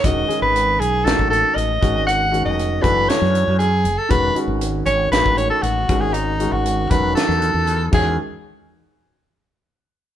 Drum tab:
CC |----------------|----------------|----------------|--------------x-|
HH |x-x-x-x-x-x-x-x-|x-x-x-x-x-x-x-x-|x-x-x-x-x-x-x-x-|x-x-x-x-x-x-x---|
SD |--------o-------|--------oo------|--------o-------|--------oo------|
BD |o--------o----o-|------o---------|o--------o----o-|------o-------o-|

CC |----------------|
HH |----------------|
SD |----------------|
BD |----------------|